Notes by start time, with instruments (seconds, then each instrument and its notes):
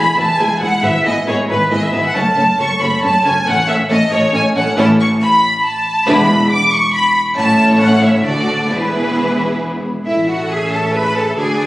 Already playing: violin section B5
0.17 double bass section E1, cello section E2, viola section G#3 E4, violin section G#4 B4 A5
0.39 double bass section E1, cello section E2, viola section G#3 E4, violin section G#4 B4 G#5
0.60 double bass section E1, cello section E2, viola section G#3 E4, violin section G#4 B4 F#5
0.83 double bass section G#1, cello section G#2, viola section B3 E4, violin section G#4 B4 E5
1.05 double bass section G#1, cello section G#2, viola section B3 E4, violin section G#4 B4 D#5
1.26 double bass section G#1, cello section G#2, viola section B3 E4, violin section G#4 B4 C#5
1.48 double bass section G#1, cello section G#2, viola section B3 E4, violin section G#4 B4
1.70 double bass section G#1, cello section G#2, viola section B3 E4, violin section G#4 B4 D#5
1.82 violin section E5
1.92 double bass section G#1, cello section G#2, viola section B3 E4, violin section G#4 B4
2.05 violin section F#5
2.14 double bass section F#1, cello section F#2, viola section A3 C#4, violin section A4 C#5 A5
2.36 double bass section F#1, cello section F#2, viola section A3 C#4, violin section A4 C#5
2.58 double bass section F#1, cello section F#2, viola section A3 C#4, violin section A4 C#5 C#6
2.80 double bass section F#1, cello section F#2, viola section A3 C#4, violin section A4 C#5 B5
3.02 double bass section F#1, cello section F#2, viola section A3 C#4, violin section A4 C#5 A5
3.24 double bass section F#1, cello section F#2, viola section A3 C#4, violin section A4 C#5 G#5
3.45 double bass section A1, cello section A2, viola section A3 C#4, violin section A4 C#5 F#5
3.67 double bass section A1, cello section A2, viola section A3 C#4, violin section A4 C#5 E5
3.89 double bass section A1, cello section A2, viola section A3 C#4, violin section A4 C#5 D#5
4.11 double bass section A1, cello section A2, viola section A3 C#4, violin section A4 C#5
4.33 double bass section A1, cello section A2, viola section A3 C#4, violin section A4 C#5 G#5
4.54 double bass section A1, cello section A2, viola section A3 C#4, violin section A4 C#5 F#5
4.77 double bass section A1, cello section A2, viola section A3 C#4, violin section E4 C#5 A5
4.99 violin section C#6
5.22 violin section B5
5.64 violin section A5
6.06 double bass section E1, cello section E2, viola section G#3 D4, violin section E4 B4 B5
6.50 violin section D6
6.71 violin section C#6
6.93 violin section B5
7.36 double bass section A1, cello section A2, viola section A3 C#4, violin section E4 C#5 A5
7.79 violin section F#5
8.03 violin section E5
8.25 double bass section D2, cello section D2, viola section A3 D4, violin section F#4 A4 D5
8.70 double bass section E1, cello section E2, viola section E3 B3, violin section E4 G#4 B4
10.05 double bass section A1, viola section C#4 A4, cello section E4, violin section E5
10.27 cello section F#4, violin section F#5
10.50 cello section G#4, violin section G#5
10.72 cello section A4, violin section A5
10.93 viola section G#4, cello section B4, violin section B5
11.16 cello section A4, violin section A5
11.38 double bass section D2, viola section D4 F#4, cello section G#4, violin section D5 G#5